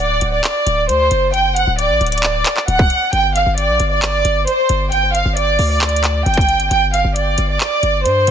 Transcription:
0.00 0.20 D1 loud
0.00 0.31 D5 medium
0.21 0.43 D1 loud
0.21 closed hi-hat medium
0.33 0.86 D5 medium
0.44 clap loud
0.44 closed hi-hat medium
0.67 0.90 D1 loud
0.67 closed hi-hat medium
0.89 1.10 D2 loud
0.89 1.31 C5 loud
0.89 closed hi-hat medium
1.11 1.65 F#1 loud
1.11 closed hi-hat medium
1.34 1.52 G5 loud
1.34 closed hi-hat medium
1.56 1.74 F#5 medium
1.56 closed hi-hat medium
1.67 1.91 D1 loud
1.78 2.10 D5 medium
1.78 closed hi-hat medium
1.90 2.00 A1 loud
2.01 2.44 D1 loud
2.01 closed hi-hat soft
2.07 closed hi-hat medium
2.12 2.65 D5 medium
2.12 closed hi-hat medium
2.18 closed hi-hat medium
2.23 clap loud
2.23 closed hi-hat medium
2.46 clap medium
2.46 closed hi-hat medium
2.57 clap medium
2.68 2.90 D1 loud
2.68 3.10 F#5 medium
2.68 closed hi-hat medium
2.79 kick loud
2.90 closed hi-hat medium
3.13 3.45 G1 loud
3.13 3.31 G5 loud
3.13 closed hi-hat medium
3.35 3.54 F5 medium
3.35 closed hi-hat medium
3.46 3.70 G1 loud
3.57 3.89 D5 medium
3.57 closed hi-hat medium
3.69 3.79 A#1 loud
3.80 4.23 G1 loud
3.80 closed hi-hat medium
3.91 4.44 D5 medium
4.02 clap loud
4.02 closed hi-hat medium
4.25 4.46 G1 loud
4.25 closed hi-hat medium
4.47 4.89 C5 medium
4.47 closed hi-hat medium
4.69 5.23 G1 loud
4.69 closed hi-hat medium
4.92 5.10 G5 medium
4.92 closed hi-hat medium
5.14 5.33 F5 medium
5.14 closed hi-hat medium
5.25 5.58 G1 loud
5.37 5.68 D5 medium
5.37 closed hi-hat medium
5.59 6.24 D2 loud
5.59 open hi-hat medium
5.70 6.23 D5 medium
5.81 clap loud
5.81 closed hi-hat soft
5.89 closed hi-hat medium
5.96 closed hi-hat medium
6.04 clap medium
6.04 closed hi-hat medium
6.26 6.69 G1 loud
6.26 6.68 G5 loud
6.26 closed hi-hat soft
6.34 kick loud
6.34 closed hi-hat medium
6.41 closed hi-hat medium
6.49 closed hi-hat medium
6.60 closed hi-hat medium
6.71 7.03 G1 loud
6.71 6.89 G5 loud
6.71 closed hi-hat medium
6.93 7.12 F5 medium
6.93 closed hi-hat medium
7.05 7.37 G1 loud
7.16 7.47 D5 medium
7.16 closed hi-hat medium
7.38 7.60 G1 loud
7.38 closed hi-hat medium
7.49 8.02 D5 medium
7.60 clap loud
7.60 closed hi-hat medium
7.83 8.07 G1 loud
7.83 closed hi-hat medium
8.05 8.27 G2 loud
8.05 8.31 C5 loud
8.05 closed hi-hat medium
8.27 8.31 A#1 loud
8.27 closed hi-hat medium

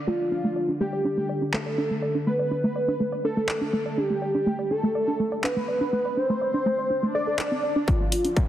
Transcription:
0.00 7.93 D3 medium
0.07 0.15 A3 medium
0.07 0.71 F4 loud
0.20 0.27 D5 medium
0.32 0.39 D4 medium
0.44 0.51 A3 medium
0.56 0.64 D5 medium
0.68 0.76 D4 medium
0.80 0.88 A3 medium
0.80 1.44 G4 medium
0.93 1.00 D5 medium
1.05 1.12 D4 medium
1.17 1.25 A3 medium
1.29 1.37 D5 medium
1.42 1.49 D4 medium
1.54 1.61 A3 medium
1.54 2.17 A4 medium
1.54 clap loud
1.66 1.73 D5 medium
1.78 1.86 D4 medium
1.90 1.98 A3 medium
2.02 2.10 D5 medium
2.15 2.22 D4 medium
2.27 2.34 A3 medium
2.27 3.15 B4 loud
2.39 2.46 D5 medium
2.51 2.59 D4 medium
2.64 2.71 A3 medium
2.76 2.83 D5 medium
2.88 2.95 D4 medium
3.00 3.08 A3 medium
3.12 3.20 D5 medium
3.24 3.32 D4 medium
3.24 3.99 A4 loud
3.37 3.44 A3 medium
3.49 3.56 D5 medium
3.49 clap loud
3.61 3.68 D4 medium
3.73 3.81 A3 medium
3.86 3.93 D5 medium
3.98 4.05 D4 medium
3.98 4.72 G4 loud
4.10 4.17 A3 medium
4.22 4.29 D5 medium
4.34 4.42 D4 medium
4.46 4.54 A3 medium
4.59 4.66 D5 medium
4.71 4.78 D4 medium
4.71 5.34 A4 medium
4.83 4.90 A3 medium
4.95 5.03 D5 medium
5.08 5.15 D4 medium
5.19 5.27 A3 medium
5.32 5.39 D5 medium
5.44 5.51 D4 medium
5.44 6.19 B4 medium
5.44 clap loud
5.56 5.64 A3 medium
5.68 5.76 D5 medium
5.81 5.88 D4 medium
5.93 6.00 A3 medium
6.05 6.12 D5 medium
6.17 6.25 D4 medium
6.17 7.05 C5 loud
6.29 6.37 A3 medium
6.41 6.49 D5 medium
6.54 6.61 D4 medium
6.66 6.73 A3 medium
6.78 6.86 D5 medium
6.90 6.98 D4 medium
6.90 swell medium
7.03 7.10 A3 medium
7.15 7.22 A4 medium
7.15 7.78 D5 loud
7.27 7.34 A4 loud
7.39 7.44 A4 medium
7.39 clap loud
7.51 7.59 C4 medium
7.63 7.71 D5 medium
7.76 7.87 D4 loud
7.88 8.48 F4 loud
7.88 kick loud
7.88 closed hi-hat soft
7.88 riser medium
8.00 8.07 A3 medium
8.12 8.20 D5 medium
8.12 open hi-hat loud
8.25 8.32 D4 medium
8.25 closed hi-hat soft
8.37 8.44 A3 medium
8.37 kick loud
8.37 closed hi-hat soft

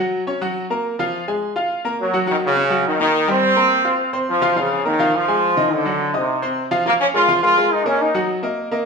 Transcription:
0.00 0.22 F#3 medium
0.00 0.22 F#4 medium
0.00 0.22 F#5 medium
0.27 0.39 C#4 medium
0.27 0.39 C#5 medium
0.27 0.39 C#6 medium
0.41 0.65 F#3 medium
0.41 0.65 F#4 medium
0.41 0.65 F#5 medium
0.70 0.94 A#3 medium
0.70 0.94 A#4 medium
0.70 0.94 A#5 medium
0.99 1.22 F3 medium
0.99 1.23 F4 medium
0.99 1.23 F5 medium
1.28 1.51 G#3 medium
1.28 1.51 G#4 medium
1.28 1.51 G#5 medium
1.56 1.79 F4 medium
1.56 1.80 F5 medium
1.56 1.80 F6 medium
1.85 2.08 A#3 medium
1.85 2.08 A#4 medium
1.85 2.08 A#5 medium
2.01 2.26 F#3 medium
2.13 2.25 F#3 medium
2.13 2.25 F#4 medium
2.13 2.25 F#5 medium
2.27 2.36 D#3 medium
2.27 2.51 F#3 medium
2.27 2.51 F#4 medium
2.27 2.51 F#5 medium
2.45 2.83 C#3 loud
2.56 2.68 C#4 medium
2.56 2.68 C#5 medium
2.56 2.68 C#6 medium
2.70 2.94 F#3 medium
2.70 2.94 F#4 medium
2.70 2.94 F#5 medium
2.87 3.00 D#3 loud
2.99 3.27 D#3 loud
2.99 3.23 A#3 medium
2.99 3.23 A#4 medium
2.99 3.23 A#5 medium
3.27 3.51 G3 medium
3.27 4.11 C4 loud
3.27 3.51 G4 medium
3.27 3.51 G5 medium
3.56 3.80 A#3 medium
3.56 3.80 A#4 medium
3.56 3.80 A#5 medium
3.85 4.08 F4 medium
3.85 4.08 F5 medium
3.85 4.09 F6 medium
4.13 4.37 C4 medium
4.13 4.37 C5 medium
4.13 4.37 C6 medium
4.29 4.55 F3 loud
4.42 4.54 F3 medium
4.42 4.54 F4 medium
4.42 4.54 F5 loud
4.56 4.86 C#3 loud
4.56 4.80 F3 medium
4.56 4.80 F4 medium
4.56 4.80 F5 medium
4.85 5.12 D#3 medium
4.85 4.97 A#3 medium
4.85 4.97 A#4 medium
4.85 4.97 A#5 medium
4.99 5.23 F3 medium
4.99 5.23 F4 medium
4.99 5.23 F5 medium
5.15 5.72 F3 loud
5.28 5.52 G#3 medium
5.28 5.52 G#4 medium
5.28 5.52 G#5 medium
5.57 5.80 D#3 medium
5.57 5.80 D#4 medium
5.57 5.81 D#5 medium
5.72 6.15 D3 medium
5.85 6.09 F#3 medium
5.85 6.09 F#4 medium
5.85 6.09 F#5 medium
6.14 6.72 C3 medium
6.14 6.37 D#4 medium
6.14 6.38 D#5 medium
6.14 6.38 D#6 medium
6.42 6.66 C4 medium
6.42 6.66 C5 medium
6.42 6.66 C6 medium
6.71 6.83 F3 medium
6.71 6.83 F4 medium
6.71 6.83 F5 medium
6.86 7.09 F3 medium
6.86 6.93 A#3 medium
6.86 7.09 F4 medium
6.86 7.09 F5 medium
7.01 7.07 C#4 loud
7.14 7.26 G#3 medium
7.14 7.41 F4 loud
7.14 7.26 G#4 medium
7.14 7.26 A#4 medium
7.28 7.40 F3 medium
7.28 7.40 F4 medium
7.28 7.40 F5 medium
7.42 7.54 G#3 medium
7.42 7.69 F4 loud
7.42 7.55 G#4 medium
7.42 7.55 A#4 medium
7.57 7.80 G#3 medium
7.57 7.81 G#4 medium
7.57 7.81 A#4 medium
7.72 7.86 D#4 medium
7.86 8.09 A#3 medium
7.86 8.00 C#4 medium
7.86 8.09 A#4 medium
7.86 8.09 D#5 medium
8.00 8.29 D#4 medium
8.14 8.38 F#3 medium
8.14 8.38 F#4 medium
8.14 8.38 F#5 medium
8.43 8.66 A#3 medium
8.43 8.67 A#4 medium
8.43 8.67 D#5 medium
8.71 8.85 A#3 medium
8.71 8.85 A#4 medium
8.71 8.85 D#5 medium

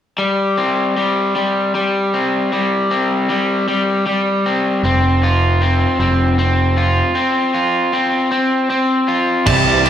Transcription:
0.18 0.96 G3 medium
0.57 2.13 C4 medium
0.97 1.35 G3 medium
1.36 1.74 G3 medium
1.75 2.52 G3 medium
2.14 2.91 C4 medium
2.53 3.29 G3 medium
2.91 4.45 C4 medium
3.30 3.67 G3 medium
3.68 4.05 G3 medium
4.06 4.84 G3 medium
4.46 4.84 C4 medium
4.83 5.85 F1 medium
4.83 5.61 C4 medium
5.23 6.76 F4 medium
5.61 5.99 C4 medium
5.99 7.01 F1 medium
5.99 6.38 C4 medium
6.39 7.14 C4 medium
6.77 7.53 F4 medium
7.15 7.92 C4 medium
7.54 9.07 F4 medium
7.93 8.30 C4 medium
8.31 8.69 C4 medium
8.70 9.45 C4 medium
9.08 9.46 F4 medium
9.45 9.90 C2 medium
9.45 9.83 C3 medium
9.45 9.84 E3 loud
9.45 9.85 G3 medium
9.45 9.85 C4 medium
9.45 9.85 E4 loud
9.45 9.90 G4 medium
9.45 9.86 G4 medium
9.45 9.90 C5 medium
9.45 9.90 E5 medium
9.45 9.90 A5 loud
9.45 9.90 C6 medium
9.45 kick loud
9.45 crash loud
9.83 9.90 C3 medium
9.83 9.90 E3 medium
9.83 9.90 G3 medium
9.83 9.90 C4 medium
9.83 9.90 E4 medium
9.83 9.90 G4 loud
9.83 ride medium

